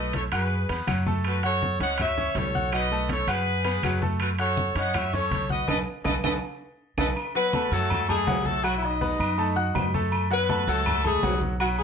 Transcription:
Already playing: B1 A3 A4 B4 D#5 A5
0.13 A4 C#5, high conga, high timbale
0.32 F#2 F#4 G#4 B4 F#5 F#6, high conga, high timbale, claves
0.51 high conga
0.69 E2 B3 B4 B5, high conga, high timbale
0.87 F#2 F#3 F#4 F#5, high conga, high timbale, claves
1.06 A3 A4 A5, high conga
1.24 F#4 B4, high conga, high timbale, claves
1.43 F#4 A4 C#5 F#5 F#6, high conga, high timbale
1.62 high conga
1.80 C#2 C#4 C#5 D#5 F#5 C#6, high conga, high timbale
1.98 F#4 C#5 E5 F#5 F#6, high conga, low conga, high timbale, claves
2.18 C#4 C#5 C#6, high conga, low conga
2.35 B1 A4 C#5, high conga, high timbale, low timbale
2.55 F#4 F#5 F#6, high conga
2.72 F#3 F#4 B4 D#5 F#5, high conga, high timbale, claves
2.91 A3 A4 A5, high conga
3.09 A4 C#5, high conga, high timbale
3.27 F#2 F#4 G#4 B4 F#5 F#6, high conga, high timbale, claves
3.47 high conga
3.65 B3 B4 B5, high conga, high timbale
3.83 F#2 F#3 F#4 F#5, high conga, high timbale, claves
4.02 A3 A4 A5, high conga
4.20 F#4 B4, high conga, high timbale, claves
4.39 F#4 A4 C#5 F#5 F#6, high conga, high timbale
4.57 high conga
4.75 F#2 C#4 C#5 D#5 F#5 C#6, high conga, high timbale
4.94 F#4 C#5 E5 F#5 F#6, high conga, low conga, high timbale, claves
5.13 C#4 A4 C#5 C#6, high conga, low conga
5.31 B1, high conga, high timbale
5.49 F#4 B4 D#5 F#5 F#6, high conga
5.68 B1 A4 B4 D#5, high conga, high timbale, claves
6.04 B1 A4 B4 D#5, high conga, high timbale, claves
6.24 B1 A4 B4 D#5, high conga, high timbale, claves
6.97 B1 A4 B4 D#5, high conga, high timbale, claves
7.16 high conga, low agogo, claves
7.35 F#3 B3 F#4 B4 F#5, high conga
7.53 A3 A4 A5, high conga, low timbale, low agogo
7.71 F#2 F#3 A3 F#4 A4 F#5, high conga
7.90 high conga, low conga, low agogo, claves
8.09 G#3 A3 G#4 A4 A5, high conga, low conga, low agogo
8.27 B1 F#3 F#4 F#5, high conga, low timbale, low agogo
8.45 A3 A4, high conga
8.63 F#3 F#4 F#5, high conga, low agogo, claves
8.77 E4
8.83 D#4 D#5, high conga, low agogo
9.01 B3 B4 B5, high conga, low timbale
9.19 F#2, high conga, low agogo, claves
9.38 A3 A4 A5, high conga, low agogo
9.56 F#4 F#5 F#6, high conga
9.75 F#2, high conga, low timbale, low agogo, claves
9.94 A3 A4 A5, high conga
10.12 high conga, low agogo, claves
10.30 F#3 B3 F#4 B4 F#5, high conga
10.49 A3 A4 A5, high conga, low timbale, low agogo
10.67 C#2 F#3 A3 F#4 A4 F#5, high conga
10.86 high conga, low conga, low agogo, claves
11.05 G#3 A3 G#4 A4 A5, high conga, low conga, low agogo
11.23 B1 F#3 F#4 F#5, high conga, low timbale, low agogo
11.41 high conga
11.60 F#3 F#4 F#5, high conga, low agogo, claves
11.78 G#3 G#4, high conga, low agogo

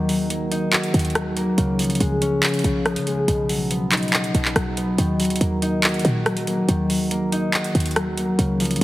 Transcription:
Already playing: D#2 D#3 A#3 D#4 F#4
0.09 F#3, open hi-hat
0.30 A#3, closed hi-hat
0.51 D#4, closed hi-hat
0.73 F#4, clap, closed hi-hat
0.83 closed hi-hat
0.94 D#2 D#3, closed hi-hat
0.99 closed hi-hat
1.05 closed hi-hat
1.10 closed hi-hat
1.15 F#3, cross-stick, closed hi-hat
1.37 A#3, closed hi-hat
1.58 C#2 C#3, closed hi-hat
1.79 F3, closed hi-hat, open hi-hat
1.84 closed hi-hat
1.90 closed hi-hat
1.95 closed hi-hat
2.00 C#2 G#3, closed hi-hat
2.22 C#4, closed hi-hat
2.43 F4, clap, closed hi-hat
2.48 closed hi-hat
2.54 closed hi-hat
2.59 closed hi-hat
2.64 B1 C#3, closed hi-hat
2.86 F3, cross-stick, closed hi-hat
2.96 C#3, closed hi-hat
3.07 G#3, closed hi-hat
3.12 B1
3.28 B1 B2, closed hi-hat
3.49 F#3, open hi-hat
3.71 B3, closed hi-hat
3.92 D#4, clap, closed hi-hat
3.97 closed hi-hat
4.03 closed hi-hat
4.08 closed hi-hat
4.13 F#4, clap, closed hi-hat
4.24 closed hi-hat
4.35 B1 B2, closed hi-hat
4.45 clap
4.56 B1 F#3, cross-stick, closed hi-hat
4.77 B3, closed hi-hat
4.98 D#2 D#3, closed hi-hat
5.20 F#3, closed hi-hat, open hi-hat
5.25 closed hi-hat
5.30 closed hi-hat
5.36 closed hi-hat
5.41 D#2 A#3, closed hi-hat
5.62 D#4, closed hi-hat
5.84 F#4, clap, closed hi-hat
5.89 closed hi-hat
5.94 closed hi-hat
5.99 closed hi-hat
6.05 A#2 D#3, closed hi-hat
6.26 F#3, cross-stick, closed hi-hat
6.37 closed hi-hat
6.47 A#3, closed hi-hat
6.68 D#2 D#3, closed hi-hat
6.90 F#3, open hi-hat
7.11 A#3, closed hi-hat
7.32 D#4, closed hi-hat
7.54 F#4, clap, closed hi-hat
7.64 closed hi-hat
7.75 D#2 D#3, closed hi-hat
7.80 closed hi-hat
7.86 closed hi-hat
7.91 closed hi-hat
7.96 F#3, cross-stick, closed hi-hat
8.17 A#3, closed hi-hat
8.39 C#2 C#3, closed hi-hat
8.60 F3, closed hi-hat, open hi-hat
8.65 closed hi-hat
8.71 closed hi-hat
8.76 closed hi-hat

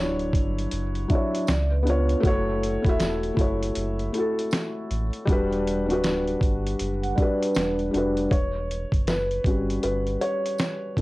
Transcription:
Already playing: D1 F#3 D4 E4 C#5 D5
0.19 closed hi-hat
0.33 G1, kick, closed hi-hat
0.58 closed hi-hat
0.71 F#1, closed hi-hat
0.95 closed hi-hat
1.08 F#3 D4 E5, kick, closed hi-hat
1.13 E4 C#5
1.35 closed hi-hat
1.47 C#2 D5, snare, closed hi-hat, tambourine
1.70 B4
1.83 B3 D4
1.87 F4 C#5, closed hi-hat
2.09 closed hi-hat
2.20 F#1 A3 E4, kick
2.25 F#4 C#5, closed hi-hat
2.63 closed hi-hat
2.82 E1 A3 E4, kick, closed hi-hat
2.87 F#4 E5
3.00 snare, closed hi-hat, tambourine
3.23 closed hi-hat
3.34 F#1 A3 E4, kick
3.39 F#4 C#5, closed hi-hat
3.63 closed hi-hat
3.75 F#1, closed hi-hat
3.99 closed hi-hat
4.13 A3 E4, closed hi-hat
4.17 F#4 A4
4.39 closed hi-hat
4.51 snare, closed hi-hat, tambourine
4.91 A1, closed hi-hat
5.13 closed hi-hat
5.25 E1 G3 D4, kick, closed hi-hat
5.30 F#4 B4
5.53 closed hi-hat
5.67 closed hi-hat
5.86 D1 G3 D4, closed hi-hat
5.91 F#4 B4
6.04 snare, closed hi-hat, tambourine
6.27 closed hi-hat
6.41 G1, kick, closed hi-hat
6.67 closed hi-hat
6.79 F#1, closed hi-hat
7.02 F#5, closed hi-hat
7.15 G3 D4 D5, kick, closed hi-hat
7.20 F#4 B4
7.41 B4, closed hi-hat
7.55 E1, snare, closed hi-hat, tambourine
7.79 closed hi-hat
7.91 F1 G3 D4, closed hi-hat
7.95 F#4 B4
8.17 closed hi-hat
8.31 E1 C#5, kick, closed hi-hat
8.71 closed hi-hat
8.92 F#1, kick, closed hi-hat
9.07 B4, snare, closed hi-hat, tambourine
9.31 closed hi-hat
9.44 G1 G3 C#4 F#4, kick, closed hi-hat
9.70 closed hi-hat
9.83 G1 B4, closed hi-hat
10.07 closed hi-hat
10.21 C#5, closed hi-hat
10.46 closed hi-hat
10.58 snare, closed hi-hat, tambourine
10.97 B1 A3 C#4 A4, kick, closed hi-hat

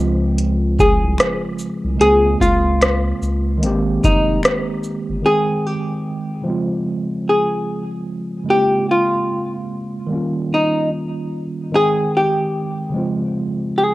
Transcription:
Already playing: C#2 C#3 F3 G#3 C4
0.00 F4
0.38 closed hi-hat
0.79 G#4, kick, shaker
1.04 C2
1.18 finger snap, cross-stick, closed hi-hat
1.59 shaker
1.84 C2
1.96 C#3 G#3
2.00 C#2 A#3 C4 G#4, closed hi-hat
2.04 F4
2.40 C#2 F4, kick, closed hi-hat, shaker
2.81 finger snap, cross-stick, closed hi-hat
3.22 C#2, shaker
3.58 D#3 G#3
3.62 G#1 A#3 C4, closed hi-hat
3.66 G4
4.04 F1 D#4, kick, closed hi-hat, shaker
4.43 finger snap, cross-stick, closed hi-hat
4.84 shaker
5.09 G1
5.22 D#3 G#3 C4 G#4
5.27 G5
5.66 G4
6.41 C#3 F3
6.46 G#3 C4
6.50 F4
7.29 G#4
8.44 C#3 G#3
8.48 A#3 C4 G4
8.52 E4
8.59 F4
8.91 F4
10.07 D#3 G3
10.11 A#3 C#4
10.15 F4
10.54 D#4
11.72 D#3 G#3 C4 G#4
11.76 G5
12.17 G4
12.89 C#3 F3
12.94 G#3 C4
12.98 F4
13.78 G#4

